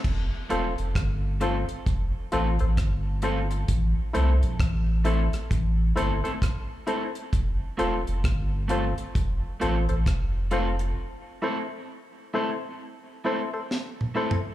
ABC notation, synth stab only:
X:1
M:4/4
L:1/16
Q:"Swing 16ths" 1/4=66
K:F
V:1 name="Synth stab"
z2 [FAc] z3 [FAc] z3 [FAc] [Ac] z2 [FAc] z | z2 [EAc] z3 [EAc] z3 [EAc] [Ac] z2 [EAc] z | z2 [FAc] z3 [FAc] z3 [FAc] [Ac] z2 [FAc] z | z2 [EAc] z3 [EAc] z3 [EAc] [Ac] z2 [EAc] z |]